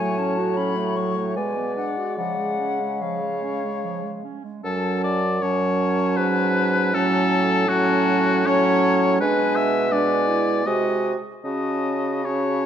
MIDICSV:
0, 0, Header, 1, 6, 480
1, 0, Start_track
1, 0, Key_signature, 3, "minor"
1, 0, Tempo, 782269
1, 837, Tempo, 820793
1, 1314, Time_signature, 3, 2, 24, 8
1, 2757, Tempo, 763359
1, 5157, Tempo, 734394
1, 6597, Tempo, 796813
1, 7796, End_track
2, 0, Start_track
2, 0, Title_t, "Flute"
2, 0, Program_c, 0, 73
2, 0, Note_on_c, 0, 80, 107
2, 114, Note_on_c, 0, 81, 89
2, 123, Note_off_c, 0, 80, 0
2, 349, Note_on_c, 0, 83, 93
2, 358, Note_off_c, 0, 81, 0
2, 593, Note_on_c, 0, 85, 88
2, 602, Note_off_c, 0, 83, 0
2, 830, Note_off_c, 0, 85, 0
2, 834, Note_on_c, 0, 80, 75
2, 1066, Note_off_c, 0, 80, 0
2, 1075, Note_on_c, 0, 78, 81
2, 1308, Note_off_c, 0, 78, 0
2, 1311, Note_on_c, 0, 78, 95
2, 1803, Note_on_c, 0, 77, 70
2, 1812, Note_off_c, 0, 78, 0
2, 2523, Note_off_c, 0, 77, 0
2, 2752, Note_on_c, 0, 81, 81
2, 3215, Note_off_c, 0, 81, 0
2, 3246, Note_on_c, 0, 81, 88
2, 4183, Note_off_c, 0, 81, 0
2, 4201, Note_on_c, 0, 81, 101
2, 4658, Note_off_c, 0, 81, 0
2, 4672, Note_on_c, 0, 81, 110
2, 5149, Note_off_c, 0, 81, 0
2, 5164, Note_on_c, 0, 81, 90
2, 5633, Note_off_c, 0, 81, 0
2, 5644, Note_on_c, 0, 80, 108
2, 6104, Note_off_c, 0, 80, 0
2, 6108, Note_on_c, 0, 80, 83
2, 6584, Note_off_c, 0, 80, 0
2, 6596, Note_on_c, 0, 80, 71
2, 6892, Note_off_c, 0, 80, 0
2, 7063, Note_on_c, 0, 81, 65
2, 7529, Note_off_c, 0, 81, 0
2, 7559, Note_on_c, 0, 81, 66
2, 7796, Note_off_c, 0, 81, 0
2, 7796, End_track
3, 0, Start_track
3, 0, Title_t, "Oboe"
3, 0, Program_c, 1, 68
3, 0, Note_on_c, 1, 73, 82
3, 835, Note_off_c, 1, 73, 0
3, 838, Note_on_c, 1, 74, 70
3, 1609, Note_off_c, 1, 74, 0
3, 1801, Note_on_c, 1, 73, 66
3, 2536, Note_off_c, 1, 73, 0
3, 2757, Note_on_c, 1, 69, 91
3, 2985, Note_off_c, 1, 69, 0
3, 3001, Note_on_c, 1, 74, 117
3, 3242, Note_on_c, 1, 73, 104
3, 3251, Note_off_c, 1, 74, 0
3, 3713, Note_on_c, 1, 71, 127
3, 3723, Note_off_c, 1, 73, 0
3, 4199, Note_on_c, 1, 69, 127
3, 4208, Note_off_c, 1, 71, 0
3, 4667, Note_on_c, 1, 66, 127
3, 4677, Note_off_c, 1, 69, 0
3, 5157, Note_on_c, 1, 73, 127
3, 5166, Note_off_c, 1, 66, 0
3, 5639, Note_off_c, 1, 73, 0
3, 5641, Note_on_c, 1, 71, 124
3, 5872, Note_on_c, 1, 76, 127
3, 5881, Note_off_c, 1, 71, 0
3, 6107, Note_on_c, 1, 74, 123
3, 6117, Note_off_c, 1, 76, 0
3, 6594, Note_on_c, 1, 75, 112
3, 6603, Note_off_c, 1, 74, 0
3, 6897, Note_off_c, 1, 75, 0
3, 7064, Note_on_c, 1, 75, 87
3, 7550, Note_on_c, 1, 73, 92
3, 7559, Note_off_c, 1, 75, 0
3, 7796, Note_off_c, 1, 73, 0
3, 7796, End_track
4, 0, Start_track
4, 0, Title_t, "Clarinet"
4, 0, Program_c, 2, 71
4, 0, Note_on_c, 2, 57, 64
4, 111, Note_on_c, 2, 61, 73
4, 120, Note_off_c, 2, 57, 0
4, 232, Note_on_c, 2, 66, 67
4, 241, Note_off_c, 2, 61, 0
4, 350, Note_on_c, 2, 61, 72
4, 360, Note_off_c, 2, 66, 0
4, 470, Note_on_c, 2, 57, 65
4, 480, Note_off_c, 2, 61, 0
4, 590, Note_on_c, 2, 54, 59
4, 599, Note_off_c, 2, 57, 0
4, 716, Note_on_c, 2, 57, 61
4, 725, Note_off_c, 2, 54, 0
4, 830, Note_off_c, 2, 57, 0
4, 834, Note_on_c, 2, 56, 68
4, 954, Note_on_c, 2, 59, 59
4, 963, Note_off_c, 2, 56, 0
4, 1073, Note_on_c, 2, 62, 57
4, 1082, Note_off_c, 2, 59, 0
4, 1192, Note_on_c, 2, 66, 55
4, 1201, Note_off_c, 2, 62, 0
4, 1308, Note_off_c, 2, 66, 0
4, 1312, Note_on_c, 2, 53, 61
4, 1435, Note_on_c, 2, 56, 54
4, 1444, Note_off_c, 2, 53, 0
4, 1554, Note_on_c, 2, 61, 59
4, 1563, Note_off_c, 2, 56, 0
4, 1678, Note_on_c, 2, 56, 57
4, 1687, Note_off_c, 2, 61, 0
4, 1800, Note_on_c, 2, 53, 64
4, 1809, Note_off_c, 2, 56, 0
4, 1925, Note_on_c, 2, 56, 63
4, 1933, Note_off_c, 2, 53, 0
4, 2050, Note_on_c, 2, 61, 57
4, 2058, Note_off_c, 2, 56, 0
4, 2170, Note_on_c, 2, 56, 56
4, 2179, Note_off_c, 2, 61, 0
4, 2288, Note_on_c, 2, 53, 63
4, 2296, Note_off_c, 2, 56, 0
4, 2402, Note_on_c, 2, 56, 56
4, 2411, Note_off_c, 2, 53, 0
4, 2519, Note_on_c, 2, 61, 52
4, 2527, Note_off_c, 2, 56, 0
4, 2635, Note_on_c, 2, 56, 56
4, 2644, Note_off_c, 2, 61, 0
4, 2747, Note_off_c, 2, 56, 0
4, 2750, Note_on_c, 2, 61, 72
4, 3131, Note_off_c, 2, 61, 0
4, 3238, Note_on_c, 2, 61, 87
4, 4179, Note_off_c, 2, 61, 0
4, 4197, Note_on_c, 2, 61, 102
4, 4655, Note_off_c, 2, 61, 0
4, 4664, Note_on_c, 2, 61, 106
4, 5145, Note_off_c, 2, 61, 0
4, 5151, Note_on_c, 2, 61, 111
4, 5639, Note_on_c, 2, 62, 98
4, 5649, Note_off_c, 2, 61, 0
4, 6102, Note_off_c, 2, 62, 0
4, 6106, Note_on_c, 2, 62, 83
4, 6344, Note_on_c, 2, 64, 80
4, 6353, Note_off_c, 2, 62, 0
4, 6589, Note_off_c, 2, 64, 0
4, 6593, Note_on_c, 2, 66, 83
4, 6890, Note_off_c, 2, 66, 0
4, 7065, Note_on_c, 2, 66, 67
4, 7530, Note_off_c, 2, 66, 0
4, 7552, Note_on_c, 2, 66, 69
4, 7796, Note_off_c, 2, 66, 0
4, 7796, End_track
5, 0, Start_track
5, 0, Title_t, "French horn"
5, 0, Program_c, 3, 60
5, 0, Note_on_c, 3, 54, 62
5, 840, Note_on_c, 3, 56, 60
5, 848, Note_off_c, 3, 54, 0
5, 2563, Note_off_c, 3, 56, 0
5, 2761, Note_on_c, 3, 54, 72
5, 3220, Note_off_c, 3, 54, 0
5, 3251, Note_on_c, 3, 54, 81
5, 4185, Note_off_c, 3, 54, 0
5, 4204, Note_on_c, 3, 54, 97
5, 4659, Note_off_c, 3, 54, 0
5, 4667, Note_on_c, 3, 54, 90
5, 5146, Note_off_c, 3, 54, 0
5, 5154, Note_on_c, 3, 54, 99
5, 5640, Note_on_c, 3, 56, 93
5, 5650, Note_off_c, 3, 54, 0
5, 6103, Note_off_c, 3, 56, 0
5, 6107, Note_on_c, 3, 56, 84
5, 6584, Note_off_c, 3, 56, 0
5, 6593, Note_on_c, 3, 56, 70
5, 6890, Note_off_c, 3, 56, 0
5, 7067, Note_on_c, 3, 61, 68
5, 7532, Note_off_c, 3, 61, 0
5, 7553, Note_on_c, 3, 61, 67
5, 7796, Note_off_c, 3, 61, 0
5, 7796, End_track
6, 0, Start_track
6, 0, Title_t, "Bassoon"
6, 0, Program_c, 4, 70
6, 0, Note_on_c, 4, 45, 78
6, 839, Note_on_c, 4, 47, 66
6, 848, Note_off_c, 4, 45, 0
6, 1146, Note_off_c, 4, 47, 0
6, 1312, Note_on_c, 4, 49, 62
6, 2537, Note_off_c, 4, 49, 0
6, 2753, Note_on_c, 4, 42, 74
6, 3717, Note_on_c, 4, 44, 84
6, 3726, Note_off_c, 4, 42, 0
6, 4198, Note_on_c, 4, 45, 91
6, 4208, Note_off_c, 4, 44, 0
6, 5637, Note_off_c, 4, 45, 0
6, 5641, Note_on_c, 4, 47, 104
6, 6577, Note_off_c, 4, 47, 0
6, 6595, Note_on_c, 4, 48, 80
6, 6891, Note_off_c, 4, 48, 0
6, 7068, Note_on_c, 4, 49, 72
6, 7796, Note_off_c, 4, 49, 0
6, 7796, End_track
0, 0, End_of_file